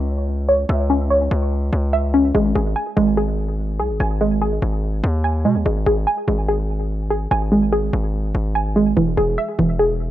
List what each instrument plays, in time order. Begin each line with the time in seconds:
Already playing: 808-style bass C#2, synth pluck C#4 C#5 E5
0.49 synth pluck C#5
0.69 808-style bass C#2, synth pluck E5
0.90 synth pluck C#4
1.10 synth pluck C#5
1.31 808-style bass C#2
1.73 808-style bass C#2
1.93 synth pluck E5
2.14 synth pluck C#4
2.35 808-style bass G#1, synth pluck G#3
2.55 808-style bass G#1, synth pluck G#4
2.76 synth pluck G#5
2.97 808-style bass G#1, synth pluck G#3
3.17 synth pluck G#4
3.79 808-style bass B1, synth pluck G#4
3.90 808-style bass G#1
4.00 808-style bass G#1, synth pluck G#5
4.21 synth pluck G#3
4.42 synth pluck G#4
4.62 808-style bass G#1
5.04 808-style bass D#2
5.24 synth pluck G#5
5.45 808-style bass B2, synth pluck G#3
5.55 808-style bass D#2
5.66 808-style bass G#1, synth pluck G#3
5.86 808-style bass G#1, synth pluck G#4
6.07 synth pluck G#5
6.28 808-style bass G#1, synth pluck G#3
6.49 synth pluck G#4
7.10 synth pluck G#4
7.31 808-style bass G#1, synth pluck G#5
7.52 synth pluck G#3
7.72 synth pluck G#4
7.93 808-style bass G#1
8.35 808-style bass G#1
8.55 synth pluck G#5
8.76 synth pluck G#3
8.97 808-style bass E1, synth pluck E3
9.17 808-style bass E1, synth pluck G#4
9.38 synth pluck E5
9.59 808-style bass E1, synth pluck E3
9.79 synth pluck G#4